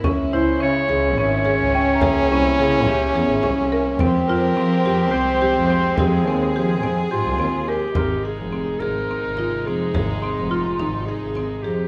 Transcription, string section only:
Already playing: E4
0.03 G#3 C#4
2.02 A#3
3.99 F3 G#3 G4
5.97 G#4
7.96 C3 G#3 D#4

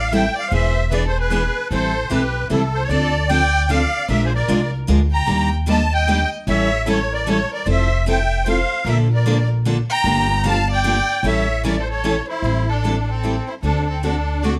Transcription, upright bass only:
Already playing: A1
0.52 E1
1.71 A1
2.10 B1
2.50 C2
2.89 D2
4.09 A#1
4.48 C2
4.89 D2
5.28 D#2
6.47 A1
7.66 F1
8.85 A#1
10.04 G1
11.23 A1
12.42 A1
13.63 D2

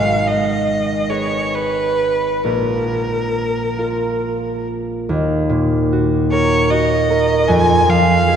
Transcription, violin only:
Already playing: F5
0.27 D#5
1.10 C#5
1.55 B4
2.44 A#4
6.32 C#5
6.71 D#5
7.48 G#5
7.90 F5

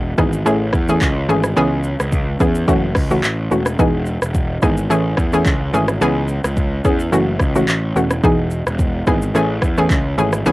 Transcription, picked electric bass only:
Already playing: E1
0.18 G#1
0.46 A1
0.73 E2
1.01 C#2
1.29 G#1
1.57 C#2
2.00 C#2
2.40 E2
2.68 F#1
2.95 C#2
3.24 A1
3.51 E1
3.79 E1
4.22 E1
4.63 G#1
4.90 A1
5.18 E2
5.46 C#2
5.74 G#1
6.01 C#2
6.45 C#2
6.85 E2
7.12 F#1
7.40 C#2
7.68 A1
7.96 E1
8.24 E1
8.67 E1
9.07 G#1
9.34 A1
9.62 E2
9.90 C#2
10.18 G#1
10.46 C#2

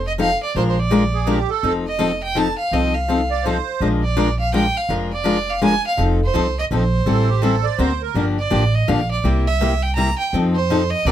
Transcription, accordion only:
1.14 G#4
1.28 G4
1.50 A4
3.31 D5
3.44 C5
7.06 A4
7.29 G4
7.42 A4
7.63 D5
7.78 C5
8.02 A#4

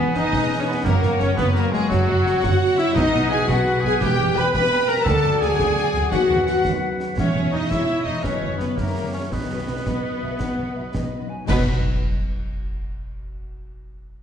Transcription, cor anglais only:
Already playing: B3
0.17 D#4
0.61 C#4
0.67 B3
0.85 A#3
1.20 C#4
1.37 B3
1.53 A#3
1.71 G#3
1.89 F#3
2.42 F#4
2.78 E4
2.94 D#4
3.30 G#4
3.47 F#4
3.81 G#4
4.01 G4
4.37 B4
4.53 B4
4.88 A#4
5.04 A4
5.41 G#4
6.11 F#4
6.47 F#4
7.17 C#4
7.53 D#4
7.70 E4
8.05 D#4
8.23 C#4
8.57 B3
8.75 A#3
9.13 C#4
9.33 B3
11.50 B4

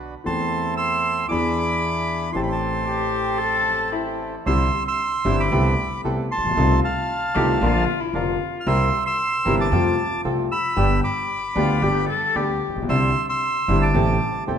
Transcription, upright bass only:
Already playing: B1
0.26 E2
1.31 E2
2.35 A1
4.46 C2
5.25 G1
5.52 C2
6.05 C2
6.37 A1
6.45 A#1
6.51 B1
6.57 C2
7.35 C2
7.61 A#1
8.13 F1
8.67 C2
9.46 G1
9.72 F2
10.25 C2
10.77 G1
11.56 D2
11.82 G1
12.35 D2
12.69 A1
12.76 A#1
12.82 B1
12.89 C2
13.68 G1
13.94 A1
14.48 E1

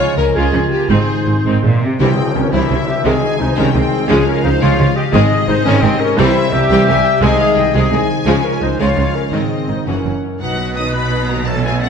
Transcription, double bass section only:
0.17 C#2
0.35 C#2
0.53 C#2
0.89 G#1
1.26 G#1
1.45 G#1
1.63 G#1
2.00 C2
2.35 C2
2.52 C2
2.70 C2
3.05 C2
3.40 C2
3.57 C2
3.75 C2
4.09 C#2
4.44 C#2
4.62 C#2
4.79 C#2
5.13 G#1
5.48 G#1
5.66 G#1
5.83 G#1
6.17 C2
6.52 C2
6.69 C2
6.87 C2
7.21 C2
7.57 C2
7.74 C2
7.92 C2
8.27 C#2
8.62 C#2
8.79 C#2
8.97 C#2
9.32 G#1
9.69 G#1
9.87 F#1
10.05 F#1
10.41 B1

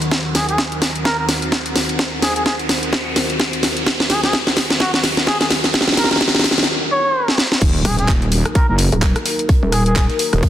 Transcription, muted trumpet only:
0.35 G#4
0.49 G#4
1.05 A#4
1.19 A#4
2.22 G#4
2.36 G#4
2.46 G#4
4.10 G#4
4.24 G#4
4.80 F#4
4.94 F#4
5.27 G#4
5.41 G#4
5.97 A#4
6.11 A#4
6.91 C#5
7.85 G#4
7.99 G#4
8.55 A#4
8.69 A#4
9.72 G#4
9.86 G#4
9.96 G#4

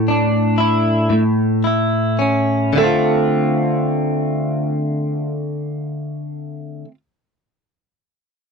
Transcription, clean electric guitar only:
Already playing: A2
0.08 D4
0.58 E4
1.10 A2
1.64 E4
2.19 C#4
2.73 D3
2.77 A3 C4
2.84 F4

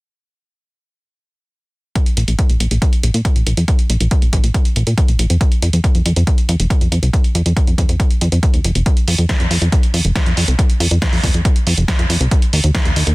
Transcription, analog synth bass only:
2.17 A#1
2.28 A#1
2.50 A#1
2.60 A#1
2.71 A#1
3.03 A#1
3.14 A#2
3.36 A#1
3.47 A#1
3.57 F2
3.90 A#1
4.00 A#1
4.22 A#1
4.33 A#1
4.43 A#1
4.76 A#1
4.87 A#2
5.08 A#1
5.19 A#1
5.30 F2
5.62 F2
5.73 F2
5.95 F2
6.06 F2
6.16 F2
6.49 F2
6.60 F1
6.81 F2
6.92 F2
7.03 C2
7.35 F2
7.46 F2
7.67 F2
7.78 F2
7.89 F2
8.21 F2
8.32 F2
8.54 D#2
8.64 F1
8.75 F1
9.08 F2
9.18 F2
9.40 F2
9.51 F2
9.61 F2
9.94 F2
10.05 F1
10.26 F2
10.37 F2
10.48 C2
10.80 F2
10.91 F2
11.13 F2
11.23 F2
11.34 F2
11.67 F2
11.77 F1
11.99 F2
12.10 F2
12.20 C2
12.53 D#2
12.64 D#2
12.85 D#2
12.96 D#2
13.07 D#2

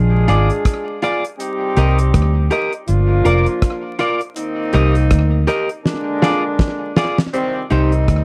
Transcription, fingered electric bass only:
Already playing: A#1
0.29 G#1
1.77 C2
2.14 D2
2.89 G1
3.26 F1
4.74 C2
5.12 D2
7.71 C2
8.08 D2

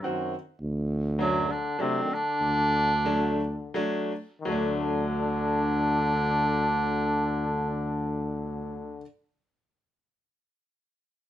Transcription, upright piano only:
0.03 D#3 C4 F#4
1.19 F#3 A3 D4
1.79 F#3 A3 D4
3.05 F#3 A3 D4
3.74 F#3 A3 D4
4.45 F#3 A3
4.52 D4

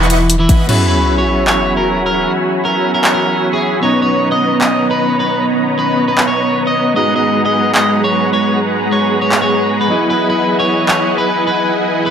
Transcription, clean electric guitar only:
0.00 E3 E4
0.40 E3 E4
0.69 B4
0.89 B4
1.18 C#5
1.47 C#5
1.77 A#4
2.06 A#4
2.65 A#4
2.94 A#4
3.14 A#4
3.53 G#4
3.83 C#5
4.02 C#5
4.32 D#5
4.61 D#5
4.91 B4
5.20 B4
5.79 B4
6.08 B4
6.28 C#5
6.67 D#5
6.96 D#5
7.16 D#5
7.45 D#5
7.75 D#5
8.04 C#5
8.33 C#5
8.92 C#5
9.22 C#5
9.42 C#5
9.81 B4
10.10 B4
10.30 B4
10.60 C#5
10.89 C#5
11.18 B4
11.47 B4
12.06 B4

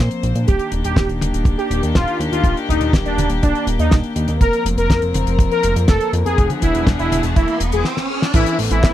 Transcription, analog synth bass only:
0.23 A#1
0.35 A#2
0.48 D#1
0.72 D#1
0.84 D#1
0.96 D#1
1.09 D#1
1.21 D#1
1.34 D#1
1.45 D#1
1.70 D#1
1.83 D#2
1.95 D#1
2.20 D#2
2.32 D#2
2.44 D#1
2.69 D#1
2.81 D#1
2.93 D#1
3.05 D#1
3.18 D#1
3.30 D#1
3.43 D#1
3.67 D#1
3.79 D#2
3.92 D#1
4.16 D#2
4.28 D#2
4.41 F1
4.65 F1
4.78 F1
4.90 F1
5.02 F1
5.14 F1
5.27 F1
5.39 F1
5.64 F1
5.76 F2
5.89 F1
6.13 F2
6.25 F2
6.38 E1
6.62 E1
6.75 E1
6.87 E1
6.99 E1
7.11 E1
7.23 E1
7.36 E1
7.60 E1
7.73 E1
8.34 A1
8.59 A1
8.71 A1
8.84 A1

